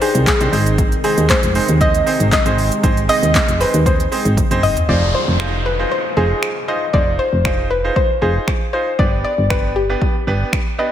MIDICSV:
0, 0, Header, 1, 7, 480
1, 0, Start_track
1, 0, Tempo, 512821
1, 734, Time_signature, 4, 2, 24, 8
1, 10219, End_track
2, 0, Start_track
2, 0, Title_t, "Synth pluck"
2, 0, Program_c, 0, 84
2, 15, Note_on_c, 0, 68, 94
2, 245, Note_off_c, 0, 68, 0
2, 256, Note_on_c, 0, 68, 75
2, 597, Note_off_c, 0, 68, 0
2, 973, Note_on_c, 0, 68, 86
2, 1216, Note_on_c, 0, 72, 95
2, 1221, Note_off_c, 0, 68, 0
2, 1662, Note_off_c, 0, 72, 0
2, 1697, Note_on_c, 0, 75, 111
2, 2167, Note_off_c, 0, 75, 0
2, 2178, Note_on_c, 0, 75, 93
2, 2518, Note_off_c, 0, 75, 0
2, 2894, Note_on_c, 0, 75, 114
2, 3340, Note_off_c, 0, 75, 0
2, 3376, Note_on_c, 0, 71, 96
2, 3616, Note_on_c, 0, 72, 84
2, 3622, Note_off_c, 0, 71, 0
2, 4298, Note_off_c, 0, 72, 0
2, 4335, Note_on_c, 0, 75, 104
2, 4443, Note_off_c, 0, 75, 0
2, 4575, Note_on_c, 0, 74, 108
2, 4816, Note_on_c, 0, 72, 103
2, 4822, Note_off_c, 0, 74, 0
2, 5296, Note_on_c, 0, 71, 99
2, 5309, Note_off_c, 0, 72, 0
2, 5536, Note_on_c, 0, 72, 94
2, 5542, Note_off_c, 0, 71, 0
2, 5773, Note_on_c, 0, 68, 92
2, 5782, Note_off_c, 0, 72, 0
2, 6220, Note_off_c, 0, 68, 0
2, 6255, Note_on_c, 0, 75, 101
2, 6478, Note_off_c, 0, 75, 0
2, 6490, Note_on_c, 0, 74, 105
2, 6599, Note_off_c, 0, 74, 0
2, 6729, Note_on_c, 0, 72, 102
2, 7178, Note_off_c, 0, 72, 0
2, 7211, Note_on_c, 0, 71, 97
2, 7450, Note_on_c, 0, 72, 94
2, 7460, Note_off_c, 0, 71, 0
2, 7559, Note_off_c, 0, 72, 0
2, 7693, Note_on_c, 0, 68, 91
2, 8172, Note_on_c, 0, 72, 86
2, 8188, Note_off_c, 0, 68, 0
2, 8412, Note_on_c, 0, 74, 97
2, 8420, Note_off_c, 0, 72, 0
2, 8641, Note_off_c, 0, 74, 0
2, 8653, Note_on_c, 0, 74, 90
2, 8894, Note_on_c, 0, 71, 92
2, 8901, Note_off_c, 0, 74, 0
2, 9117, Note_off_c, 0, 71, 0
2, 9134, Note_on_c, 0, 67, 84
2, 9816, Note_off_c, 0, 67, 0
2, 10098, Note_on_c, 0, 75, 88
2, 10219, Note_off_c, 0, 75, 0
2, 10219, End_track
3, 0, Start_track
3, 0, Title_t, "Grand piano"
3, 0, Program_c, 1, 0
3, 12, Note_on_c, 1, 62, 75
3, 13, Note_on_c, 1, 63, 70
3, 15, Note_on_c, 1, 67, 73
3, 17, Note_on_c, 1, 72, 81
3, 230, Note_off_c, 1, 62, 0
3, 231, Note_off_c, 1, 63, 0
3, 232, Note_off_c, 1, 67, 0
3, 233, Note_off_c, 1, 72, 0
3, 379, Note_on_c, 1, 62, 76
3, 380, Note_on_c, 1, 63, 71
3, 381, Note_on_c, 1, 67, 69
3, 383, Note_on_c, 1, 72, 85
3, 478, Note_off_c, 1, 63, 0
3, 480, Note_off_c, 1, 72, 0
3, 488, Note_on_c, 1, 60, 79
3, 492, Note_on_c, 1, 63, 72
3, 493, Note_off_c, 1, 62, 0
3, 493, Note_on_c, 1, 68, 69
3, 494, Note_off_c, 1, 67, 0
3, 494, Note_on_c, 1, 72, 85
3, 881, Note_off_c, 1, 60, 0
3, 883, Note_off_c, 1, 63, 0
3, 883, Note_off_c, 1, 68, 0
3, 884, Note_off_c, 1, 72, 0
3, 974, Note_on_c, 1, 60, 77
3, 974, Note_on_c, 1, 63, 71
3, 975, Note_on_c, 1, 68, 74
3, 977, Note_on_c, 1, 72, 86
3, 1265, Note_off_c, 1, 60, 0
3, 1265, Note_off_c, 1, 63, 0
3, 1265, Note_off_c, 1, 68, 0
3, 1266, Note_off_c, 1, 72, 0
3, 1451, Note_on_c, 1, 60, 70
3, 1453, Note_on_c, 1, 63, 67
3, 1454, Note_on_c, 1, 68, 66
3, 1456, Note_on_c, 1, 72, 81
3, 1602, Note_off_c, 1, 60, 0
3, 1603, Note_off_c, 1, 63, 0
3, 1604, Note_off_c, 1, 68, 0
3, 1605, Note_off_c, 1, 72, 0
3, 1691, Note_on_c, 1, 60, 73
3, 1692, Note_on_c, 1, 63, 70
3, 1695, Note_on_c, 1, 68, 66
3, 1696, Note_on_c, 1, 72, 82
3, 1842, Note_off_c, 1, 60, 0
3, 1843, Note_off_c, 1, 63, 0
3, 1844, Note_off_c, 1, 68, 0
3, 1845, Note_off_c, 1, 72, 0
3, 1931, Note_on_c, 1, 60, 74
3, 1933, Note_on_c, 1, 63, 72
3, 1935, Note_on_c, 1, 68, 72
3, 1936, Note_on_c, 1, 72, 85
3, 2150, Note_off_c, 1, 60, 0
3, 2151, Note_off_c, 1, 63, 0
3, 2152, Note_off_c, 1, 68, 0
3, 2153, Note_off_c, 1, 72, 0
3, 2301, Note_on_c, 1, 60, 77
3, 2302, Note_on_c, 1, 63, 68
3, 2303, Note_on_c, 1, 68, 70
3, 2305, Note_on_c, 1, 72, 86
3, 2516, Note_off_c, 1, 60, 0
3, 2516, Note_off_c, 1, 63, 0
3, 2517, Note_off_c, 1, 68, 0
3, 2518, Note_off_c, 1, 72, 0
3, 2651, Note_on_c, 1, 60, 85
3, 2653, Note_on_c, 1, 63, 80
3, 2655, Note_on_c, 1, 68, 82
3, 2655, Note_on_c, 1, 72, 94
3, 2802, Note_off_c, 1, 60, 0
3, 2803, Note_off_c, 1, 63, 0
3, 2804, Note_off_c, 1, 68, 0
3, 2804, Note_off_c, 1, 72, 0
3, 2890, Note_on_c, 1, 60, 78
3, 2891, Note_on_c, 1, 68, 71
3, 2892, Note_on_c, 1, 63, 69
3, 2894, Note_on_c, 1, 75, 85
3, 3183, Note_off_c, 1, 60, 0
3, 3184, Note_off_c, 1, 63, 0
3, 3184, Note_off_c, 1, 68, 0
3, 3185, Note_off_c, 1, 75, 0
3, 3370, Note_on_c, 1, 60, 72
3, 3371, Note_on_c, 1, 63, 64
3, 3372, Note_on_c, 1, 68, 64
3, 3374, Note_on_c, 1, 72, 79
3, 3522, Note_off_c, 1, 60, 0
3, 3522, Note_off_c, 1, 63, 0
3, 3523, Note_off_c, 1, 68, 0
3, 3524, Note_off_c, 1, 72, 0
3, 3611, Note_on_c, 1, 60, 73
3, 3613, Note_on_c, 1, 63, 65
3, 3614, Note_on_c, 1, 68, 67
3, 3615, Note_on_c, 1, 72, 78
3, 3762, Note_off_c, 1, 60, 0
3, 3763, Note_off_c, 1, 63, 0
3, 3764, Note_off_c, 1, 68, 0
3, 3764, Note_off_c, 1, 72, 0
3, 3853, Note_on_c, 1, 60, 76
3, 3855, Note_on_c, 1, 63, 69
3, 3856, Note_on_c, 1, 68, 69
3, 3857, Note_on_c, 1, 72, 82
3, 4071, Note_off_c, 1, 60, 0
3, 4072, Note_off_c, 1, 63, 0
3, 4072, Note_off_c, 1, 68, 0
3, 4073, Note_off_c, 1, 72, 0
3, 4221, Note_on_c, 1, 60, 86
3, 4221, Note_on_c, 1, 63, 84
3, 4224, Note_on_c, 1, 68, 80
3, 4225, Note_on_c, 1, 72, 101
3, 4435, Note_off_c, 1, 60, 0
3, 4436, Note_off_c, 1, 63, 0
3, 4437, Note_off_c, 1, 68, 0
3, 4438, Note_off_c, 1, 72, 0
3, 4574, Note_on_c, 1, 63, 67
3, 4575, Note_on_c, 1, 65, 65
3, 4577, Note_on_c, 1, 68, 61
3, 4578, Note_on_c, 1, 72, 76
3, 4865, Note_off_c, 1, 63, 0
3, 4865, Note_off_c, 1, 65, 0
3, 4866, Note_off_c, 1, 68, 0
3, 4867, Note_off_c, 1, 72, 0
3, 5052, Note_on_c, 1, 63, 72
3, 5054, Note_on_c, 1, 65, 67
3, 5054, Note_on_c, 1, 68, 64
3, 5057, Note_on_c, 1, 72, 82
3, 5270, Note_off_c, 1, 63, 0
3, 5272, Note_off_c, 1, 65, 0
3, 5272, Note_off_c, 1, 68, 0
3, 5273, Note_off_c, 1, 72, 0
3, 5420, Note_on_c, 1, 63, 73
3, 5422, Note_on_c, 1, 65, 69
3, 5424, Note_on_c, 1, 68, 65
3, 5425, Note_on_c, 1, 72, 83
3, 5635, Note_off_c, 1, 63, 0
3, 5636, Note_off_c, 1, 65, 0
3, 5637, Note_off_c, 1, 68, 0
3, 5638, Note_off_c, 1, 72, 0
3, 5771, Note_on_c, 1, 63, 74
3, 5773, Note_on_c, 1, 65, 68
3, 5775, Note_on_c, 1, 68, 66
3, 5777, Note_on_c, 1, 72, 80
3, 6063, Note_off_c, 1, 63, 0
3, 6064, Note_off_c, 1, 65, 0
3, 6065, Note_off_c, 1, 68, 0
3, 6066, Note_off_c, 1, 72, 0
3, 6251, Note_on_c, 1, 63, 72
3, 6253, Note_on_c, 1, 65, 63
3, 6255, Note_on_c, 1, 68, 62
3, 6256, Note_on_c, 1, 72, 77
3, 6402, Note_off_c, 1, 63, 0
3, 6403, Note_off_c, 1, 65, 0
3, 6404, Note_off_c, 1, 68, 0
3, 6405, Note_off_c, 1, 72, 0
3, 6494, Note_on_c, 1, 63, 73
3, 6495, Note_on_c, 1, 65, 64
3, 6496, Note_on_c, 1, 68, 67
3, 6498, Note_on_c, 1, 72, 78
3, 6785, Note_off_c, 1, 63, 0
3, 6785, Note_off_c, 1, 65, 0
3, 6786, Note_off_c, 1, 68, 0
3, 6787, Note_off_c, 1, 72, 0
3, 6972, Note_on_c, 1, 63, 72
3, 6974, Note_on_c, 1, 65, 67
3, 6976, Note_on_c, 1, 68, 68
3, 6977, Note_on_c, 1, 72, 84
3, 7190, Note_off_c, 1, 63, 0
3, 7191, Note_off_c, 1, 65, 0
3, 7192, Note_off_c, 1, 68, 0
3, 7193, Note_off_c, 1, 72, 0
3, 7340, Note_on_c, 1, 63, 69
3, 7341, Note_on_c, 1, 65, 64
3, 7343, Note_on_c, 1, 68, 67
3, 7345, Note_on_c, 1, 72, 82
3, 7555, Note_off_c, 1, 63, 0
3, 7556, Note_off_c, 1, 65, 0
3, 7557, Note_off_c, 1, 68, 0
3, 7558, Note_off_c, 1, 72, 0
3, 7689, Note_on_c, 1, 63, 71
3, 7691, Note_on_c, 1, 65, 70
3, 7693, Note_on_c, 1, 68, 67
3, 7695, Note_on_c, 1, 72, 81
3, 7982, Note_off_c, 1, 63, 0
3, 7984, Note_off_c, 1, 65, 0
3, 7984, Note_off_c, 1, 68, 0
3, 7985, Note_off_c, 1, 72, 0
3, 8172, Note_on_c, 1, 63, 69
3, 8174, Note_on_c, 1, 65, 66
3, 8175, Note_on_c, 1, 68, 65
3, 8176, Note_on_c, 1, 72, 74
3, 8323, Note_off_c, 1, 63, 0
3, 8323, Note_off_c, 1, 65, 0
3, 8324, Note_off_c, 1, 68, 0
3, 8325, Note_off_c, 1, 72, 0
3, 8411, Note_on_c, 1, 59, 71
3, 8414, Note_on_c, 1, 62, 65
3, 8414, Note_on_c, 1, 67, 64
3, 8417, Note_on_c, 1, 71, 77
3, 8703, Note_off_c, 1, 59, 0
3, 8705, Note_off_c, 1, 62, 0
3, 8705, Note_off_c, 1, 67, 0
3, 8706, Note_off_c, 1, 71, 0
3, 8890, Note_on_c, 1, 59, 70
3, 8892, Note_on_c, 1, 62, 68
3, 8895, Note_on_c, 1, 67, 66
3, 8896, Note_on_c, 1, 71, 82
3, 9110, Note_off_c, 1, 59, 0
3, 9110, Note_off_c, 1, 62, 0
3, 9112, Note_off_c, 1, 67, 0
3, 9112, Note_off_c, 1, 71, 0
3, 9262, Note_on_c, 1, 59, 72
3, 9264, Note_on_c, 1, 62, 66
3, 9265, Note_on_c, 1, 67, 69
3, 9267, Note_on_c, 1, 71, 81
3, 9476, Note_off_c, 1, 59, 0
3, 9477, Note_off_c, 1, 62, 0
3, 9478, Note_off_c, 1, 67, 0
3, 9478, Note_off_c, 1, 71, 0
3, 9614, Note_on_c, 1, 59, 73
3, 9616, Note_on_c, 1, 62, 68
3, 9617, Note_on_c, 1, 67, 65
3, 9619, Note_on_c, 1, 71, 82
3, 9905, Note_off_c, 1, 59, 0
3, 9906, Note_off_c, 1, 62, 0
3, 9906, Note_off_c, 1, 67, 0
3, 9907, Note_off_c, 1, 71, 0
3, 10093, Note_on_c, 1, 59, 68
3, 10096, Note_on_c, 1, 62, 67
3, 10098, Note_on_c, 1, 67, 66
3, 10099, Note_on_c, 1, 71, 77
3, 10219, Note_off_c, 1, 59, 0
3, 10219, Note_off_c, 1, 62, 0
3, 10219, Note_off_c, 1, 67, 0
3, 10219, Note_off_c, 1, 71, 0
3, 10219, End_track
4, 0, Start_track
4, 0, Title_t, "Analog synth pad"
4, 0, Program_c, 2, 89
4, 0, Note_on_c, 2, 51, 95
4, 0, Note_on_c, 2, 71, 79
4, 477, Note_off_c, 2, 71, 0
4, 493, Note_on_c, 2, 48, 86
4, 493, Note_on_c, 2, 56, 74
4, 2394, Note_off_c, 2, 56, 0
4, 2415, Note_on_c, 2, 56, 76
4, 4536, Note_off_c, 2, 48, 0
4, 4538, Note_off_c, 2, 51, 0
4, 4553, Note_off_c, 2, 56, 0
4, 10219, End_track
5, 0, Start_track
5, 0, Title_t, "FM bass"
5, 0, Program_c, 3, 39
5, 139, Note_on_c, 3, 36, 101
5, 296, Note_off_c, 3, 36, 0
5, 381, Note_on_c, 3, 36, 99
5, 454, Note_off_c, 3, 36, 0
5, 493, Note_on_c, 3, 32, 107
5, 889, Note_off_c, 3, 32, 0
5, 1100, Note_on_c, 3, 39, 90
5, 1257, Note_off_c, 3, 39, 0
5, 1340, Note_on_c, 3, 29, 100
5, 1497, Note_off_c, 3, 29, 0
5, 1581, Note_on_c, 3, 39, 93
5, 1894, Note_off_c, 3, 39, 0
5, 2062, Note_on_c, 3, 32, 98
5, 2218, Note_off_c, 3, 32, 0
5, 2301, Note_on_c, 3, 32, 101
5, 2531, Note_off_c, 3, 32, 0
5, 2655, Note_on_c, 3, 32, 119
5, 2894, Note_off_c, 3, 32, 0
5, 3020, Note_on_c, 3, 39, 84
5, 3177, Note_off_c, 3, 39, 0
5, 3260, Note_on_c, 3, 29, 95
5, 3417, Note_off_c, 3, 29, 0
5, 3500, Note_on_c, 3, 39, 91
5, 3813, Note_off_c, 3, 39, 0
5, 3980, Note_on_c, 3, 32, 97
5, 4137, Note_off_c, 3, 32, 0
5, 4221, Note_on_c, 3, 30, 100
5, 4451, Note_off_c, 3, 30, 0
5, 4575, Note_on_c, 3, 29, 103
5, 4814, Note_off_c, 3, 29, 0
5, 4942, Note_on_c, 3, 29, 84
5, 5484, Note_off_c, 3, 29, 0
5, 5774, Note_on_c, 3, 29, 88
5, 5930, Note_off_c, 3, 29, 0
5, 6494, Note_on_c, 3, 29, 106
5, 6733, Note_off_c, 3, 29, 0
5, 6858, Note_on_c, 3, 29, 87
5, 7402, Note_off_c, 3, 29, 0
5, 7694, Note_on_c, 3, 29, 90
5, 7851, Note_off_c, 3, 29, 0
5, 8416, Note_on_c, 3, 31, 101
5, 8654, Note_off_c, 3, 31, 0
5, 8782, Note_on_c, 3, 31, 82
5, 9325, Note_off_c, 3, 31, 0
5, 9615, Note_on_c, 3, 31, 84
5, 9771, Note_off_c, 3, 31, 0
5, 10219, End_track
6, 0, Start_track
6, 0, Title_t, "Downlifter"
6, 0, Program_c, 4, 103
6, 4574, Note_on_c, 4, 60, 82
6, 8414, Note_off_c, 4, 60, 0
6, 10219, End_track
7, 0, Start_track
7, 0, Title_t, "Drums"
7, 15, Note_on_c, 9, 46, 84
7, 15, Note_on_c, 9, 82, 60
7, 108, Note_off_c, 9, 46, 0
7, 108, Note_off_c, 9, 82, 0
7, 140, Note_on_c, 9, 42, 54
7, 140, Note_on_c, 9, 82, 74
7, 234, Note_off_c, 9, 42, 0
7, 234, Note_off_c, 9, 82, 0
7, 253, Note_on_c, 9, 36, 109
7, 255, Note_on_c, 9, 39, 109
7, 255, Note_on_c, 9, 42, 82
7, 255, Note_on_c, 9, 82, 78
7, 263, Note_on_c, 9, 38, 84
7, 346, Note_off_c, 9, 36, 0
7, 348, Note_off_c, 9, 42, 0
7, 348, Note_off_c, 9, 82, 0
7, 349, Note_off_c, 9, 39, 0
7, 357, Note_off_c, 9, 38, 0
7, 381, Note_on_c, 9, 42, 61
7, 381, Note_on_c, 9, 82, 57
7, 474, Note_off_c, 9, 42, 0
7, 474, Note_off_c, 9, 82, 0
7, 496, Note_on_c, 9, 46, 74
7, 496, Note_on_c, 9, 82, 54
7, 589, Note_off_c, 9, 46, 0
7, 589, Note_off_c, 9, 82, 0
7, 622, Note_on_c, 9, 42, 50
7, 622, Note_on_c, 9, 82, 73
7, 715, Note_off_c, 9, 42, 0
7, 715, Note_off_c, 9, 82, 0
7, 734, Note_on_c, 9, 36, 112
7, 734, Note_on_c, 9, 42, 66
7, 734, Note_on_c, 9, 82, 70
7, 827, Note_off_c, 9, 36, 0
7, 828, Note_off_c, 9, 42, 0
7, 828, Note_off_c, 9, 82, 0
7, 862, Note_on_c, 9, 42, 46
7, 862, Note_on_c, 9, 82, 47
7, 955, Note_off_c, 9, 42, 0
7, 955, Note_off_c, 9, 82, 0
7, 973, Note_on_c, 9, 46, 76
7, 973, Note_on_c, 9, 82, 54
7, 1067, Note_off_c, 9, 46, 0
7, 1067, Note_off_c, 9, 82, 0
7, 1102, Note_on_c, 9, 42, 58
7, 1102, Note_on_c, 9, 82, 80
7, 1196, Note_off_c, 9, 42, 0
7, 1196, Note_off_c, 9, 82, 0
7, 1213, Note_on_c, 9, 42, 72
7, 1213, Note_on_c, 9, 82, 76
7, 1214, Note_on_c, 9, 36, 108
7, 1214, Note_on_c, 9, 39, 116
7, 1222, Note_on_c, 9, 38, 90
7, 1307, Note_off_c, 9, 36, 0
7, 1307, Note_off_c, 9, 39, 0
7, 1307, Note_off_c, 9, 42, 0
7, 1307, Note_off_c, 9, 82, 0
7, 1316, Note_off_c, 9, 38, 0
7, 1340, Note_on_c, 9, 42, 61
7, 1340, Note_on_c, 9, 82, 63
7, 1434, Note_off_c, 9, 42, 0
7, 1434, Note_off_c, 9, 82, 0
7, 1452, Note_on_c, 9, 46, 79
7, 1452, Note_on_c, 9, 82, 58
7, 1546, Note_off_c, 9, 46, 0
7, 1546, Note_off_c, 9, 82, 0
7, 1577, Note_on_c, 9, 42, 58
7, 1577, Note_on_c, 9, 82, 84
7, 1671, Note_off_c, 9, 42, 0
7, 1671, Note_off_c, 9, 82, 0
7, 1692, Note_on_c, 9, 36, 108
7, 1692, Note_on_c, 9, 42, 66
7, 1692, Note_on_c, 9, 82, 65
7, 1786, Note_off_c, 9, 36, 0
7, 1786, Note_off_c, 9, 42, 0
7, 1786, Note_off_c, 9, 82, 0
7, 1820, Note_on_c, 9, 42, 58
7, 1820, Note_on_c, 9, 82, 57
7, 1914, Note_off_c, 9, 42, 0
7, 1914, Note_off_c, 9, 82, 0
7, 1936, Note_on_c, 9, 46, 81
7, 1936, Note_on_c, 9, 82, 58
7, 2029, Note_off_c, 9, 46, 0
7, 2029, Note_off_c, 9, 82, 0
7, 2061, Note_on_c, 9, 42, 56
7, 2061, Note_on_c, 9, 82, 77
7, 2154, Note_off_c, 9, 42, 0
7, 2154, Note_off_c, 9, 82, 0
7, 2173, Note_on_c, 9, 36, 108
7, 2175, Note_on_c, 9, 39, 103
7, 2175, Note_on_c, 9, 42, 80
7, 2175, Note_on_c, 9, 82, 84
7, 2184, Note_on_c, 9, 38, 86
7, 2267, Note_off_c, 9, 36, 0
7, 2268, Note_off_c, 9, 42, 0
7, 2268, Note_off_c, 9, 82, 0
7, 2269, Note_off_c, 9, 39, 0
7, 2277, Note_off_c, 9, 38, 0
7, 2301, Note_on_c, 9, 42, 56
7, 2301, Note_on_c, 9, 82, 58
7, 2395, Note_off_c, 9, 42, 0
7, 2395, Note_off_c, 9, 82, 0
7, 2418, Note_on_c, 9, 46, 71
7, 2418, Note_on_c, 9, 82, 50
7, 2511, Note_off_c, 9, 46, 0
7, 2511, Note_off_c, 9, 82, 0
7, 2543, Note_on_c, 9, 42, 50
7, 2543, Note_on_c, 9, 82, 70
7, 2637, Note_off_c, 9, 42, 0
7, 2637, Note_off_c, 9, 82, 0
7, 2654, Note_on_c, 9, 36, 116
7, 2655, Note_on_c, 9, 42, 69
7, 2655, Note_on_c, 9, 82, 70
7, 2748, Note_off_c, 9, 36, 0
7, 2749, Note_off_c, 9, 42, 0
7, 2749, Note_off_c, 9, 82, 0
7, 2782, Note_on_c, 9, 42, 50
7, 2782, Note_on_c, 9, 82, 49
7, 2876, Note_off_c, 9, 42, 0
7, 2876, Note_off_c, 9, 82, 0
7, 2893, Note_on_c, 9, 46, 74
7, 2893, Note_on_c, 9, 82, 54
7, 2986, Note_off_c, 9, 46, 0
7, 2986, Note_off_c, 9, 82, 0
7, 3024, Note_on_c, 9, 42, 55
7, 3024, Note_on_c, 9, 82, 75
7, 3118, Note_off_c, 9, 42, 0
7, 3118, Note_off_c, 9, 82, 0
7, 3135, Note_on_c, 9, 36, 108
7, 3135, Note_on_c, 9, 42, 73
7, 3135, Note_on_c, 9, 82, 70
7, 3136, Note_on_c, 9, 39, 113
7, 3145, Note_on_c, 9, 38, 93
7, 3229, Note_off_c, 9, 36, 0
7, 3229, Note_off_c, 9, 42, 0
7, 3229, Note_off_c, 9, 82, 0
7, 3230, Note_off_c, 9, 39, 0
7, 3238, Note_off_c, 9, 38, 0
7, 3262, Note_on_c, 9, 42, 64
7, 3262, Note_on_c, 9, 82, 61
7, 3355, Note_off_c, 9, 42, 0
7, 3355, Note_off_c, 9, 82, 0
7, 3375, Note_on_c, 9, 46, 76
7, 3375, Note_on_c, 9, 82, 55
7, 3469, Note_off_c, 9, 46, 0
7, 3469, Note_off_c, 9, 82, 0
7, 3501, Note_on_c, 9, 42, 59
7, 3501, Note_on_c, 9, 82, 84
7, 3594, Note_off_c, 9, 42, 0
7, 3594, Note_off_c, 9, 82, 0
7, 3614, Note_on_c, 9, 36, 110
7, 3615, Note_on_c, 9, 42, 64
7, 3615, Note_on_c, 9, 82, 67
7, 3707, Note_off_c, 9, 36, 0
7, 3709, Note_off_c, 9, 42, 0
7, 3709, Note_off_c, 9, 82, 0
7, 3744, Note_on_c, 9, 42, 54
7, 3744, Note_on_c, 9, 82, 57
7, 3837, Note_off_c, 9, 42, 0
7, 3837, Note_off_c, 9, 82, 0
7, 3857, Note_on_c, 9, 46, 80
7, 3857, Note_on_c, 9, 82, 58
7, 3951, Note_off_c, 9, 46, 0
7, 3951, Note_off_c, 9, 82, 0
7, 3982, Note_on_c, 9, 42, 54
7, 3982, Note_on_c, 9, 82, 75
7, 4076, Note_off_c, 9, 42, 0
7, 4076, Note_off_c, 9, 82, 0
7, 4094, Note_on_c, 9, 36, 104
7, 4096, Note_on_c, 9, 48, 59
7, 4097, Note_on_c, 9, 42, 84
7, 4097, Note_on_c, 9, 82, 79
7, 4187, Note_off_c, 9, 36, 0
7, 4189, Note_off_c, 9, 48, 0
7, 4190, Note_off_c, 9, 42, 0
7, 4190, Note_off_c, 9, 82, 0
7, 4222, Note_on_c, 9, 42, 59
7, 4222, Note_on_c, 9, 82, 56
7, 4316, Note_off_c, 9, 42, 0
7, 4316, Note_off_c, 9, 82, 0
7, 4334, Note_on_c, 9, 45, 88
7, 4336, Note_on_c, 9, 46, 74
7, 4336, Note_on_c, 9, 82, 50
7, 4428, Note_off_c, 9, 45, 0
7, 4430, Note_off_c, 9, 46, 0
7, 4430, Note_off_c, 9, 82, 0
7, 4462, Note_on_c, 9, 42, 50
7, 4462, Note_on_c, 9, 43, 90
7, 4462, Note_on_c, 9, 82, 72
7, 4555, Note_off_c, 9, 42, 0
7, 4555, Note_off_c, 9, 82, 0
7, 4556, Note_off_c, 9, 43, 0
7, 5053, Note_on_c, 9, 26, 107
7, 5146, Note_off_c, 9, 26, 0
7, 6015, Note_on_c, 9, 26, 101
7, 6109, Note_off_c, 9, 26, 0
7, 6494, Note_on_c, 9, 36, 112
7, 6587, Note_off_c, 9, 36, 0
7, 6974, Note_on_c, 9, 26, 104
7, 6974, Note_on_c, 9, 36, 106
7, 7067, Note_off_c, 9, 26, 0
7, 7068, Note_off_c, 9, 36, 0
7, 7453, Note_on_c, 9, 36, 108
7, 7546, Note_off_c, 9, 36, 0
7, 7934, Note_on_c, 9, 36, 98
7, 7935, Note_on_c, 9, 26, 100
7, 8027, Note_off_c, 9, 36, 0
7, 8029, Note_off_c, 9, 26, 0
7, 8415, Note_on_c, 9, 36, 110
7, 8509, Note_off_c, 9, 36, 0
7, 8895, Note_on_c, 9, 36, 103
7, 8896, Note_on_c, 9, 26, 106
7, 8989, Note_off_c, 9, 36, 0
7, 8990, Note_off_c, 9, 26, 0
7, 9374, Note_on_c, 9, 36, 112
7, 9468, Note_off_c, 9, 36, 0
7, 9854, Note_on_c, 9, 36, 99
7, 9856, Note_on_c, 9, 26, 104
7, 9948, Note_off_c, 9, 36, 0
7, 9950, Note_off_c, 9, 26, 0
7, 10219, End_track
0, 0, End_of_file